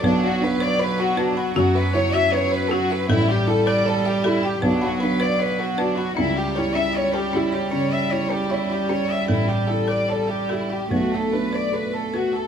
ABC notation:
X:1
M:4/4
L:1/16
Q:1/4=78
K:Bm
V:1 name="Marimba"
B z f B b f B b F e e F B z F e | A z e A g e A g B b b B d z B b | C z G C c G C c C c c C E z C c | A z e A g e A g B a a B d z B a |]
V:2 name="Violin section"
D F B d B F D F F B c e c B F B | E G A d A G E G D F B d B F D F | E G c e c G E G c e c G E G c e | E G A d A G E G F A B d B A F A |]
V:3 name="Felt piano"
B,,,2 D2 B2 F2 F,,2 E2 B2 F2 | A,,,2 E2 d2 G2 B,,,2 D2 d2 F2 | C,,2 E2 c2 G2 C,2 E2 c2 G2 | A,,,2 E2 d2 G2 B,,,2 D2 A2 F2 |]
V:4 name="Cello" clef=bass
F,16 | G,8 F,8 | G,16- | G,8 A,6- A, z |]